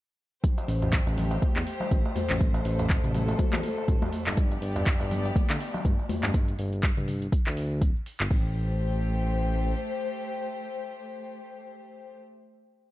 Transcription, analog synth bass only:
0.68 1.00 A1 loud
1.07 1.37 A1 loud
1.56 1.63 E2 loud
1.91 2.01 A1 medium
2.30 2.60 A1 medium
2.65 2.97 A1 loud
3.04 3.34 A1 loud
3.53 3.60 E2 loud
3.88 3.98 A1 medium
4.27 4.57 G1 medium
4.62 4.93 G1 loud
5.00 5.30 G1 loud
5.50 5.57 D2 loud
5.85 5.94 G1 medium
6.24 6.53 G1 medium
6.59 6.90 G1 loud
6.97 7.27 G1 loud
7.46 7.83 D2 loud
7.81 7.91 D1 medium
8.20 8.27 G1 loud
8.31 9.74 A1 loud

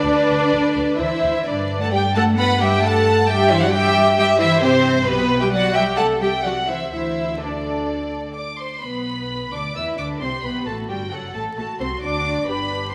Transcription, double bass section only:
0.05 0.13 D2 medium
0.29 0.37 D2 medium
0.53 0.61 D2 medium
0.76 0.84 D2 medium
0.99 1.07 D2 medium
1.23 1.31 D2 medium
1.46 5.03 G2 medium
5.08 5.96 B1 loud
5.98 6.90 C2 medium
6.92 8.63 D2 medium
8.82 9.49 B1 medium
9.52 9.76 D2 medium
9.75 9.83 E2 medium
9.98 10.21 D2 medium
10.21 10.29 C2 medium
10.44 10.52 B1 medium
10.66 10.89 A1 medium
10.89 11.12 G1 medium
11.12 11.35 F#1 medium
11.35 11.43 A1 medium
11.58 11.66 A1 medium
11.80 12.03 C2 medium
12.03 12.48 D2 medium
12.48 12.95 G1 medium

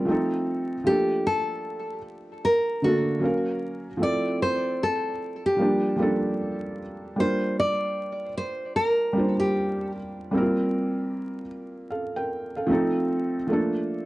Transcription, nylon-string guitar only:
0.00 0.43 F4 medium
0.87 1.27 G4 loud
1.27 2.01 A4 loud
2.45 2.85 A#4 loud
2.84 3.59 F#4 medium
4.03 4.42 D5 loud
4.42 4.82 C5 loud
4.83 5.41 A4 medium
5.46 6.75 G4 medium
7.20 7.59 C5 loud
7.60 8.37 D5 loud
8.37 8.75 C5 medium
8.76 9.39 A#4 medium
9.40 9.90 G4 medium

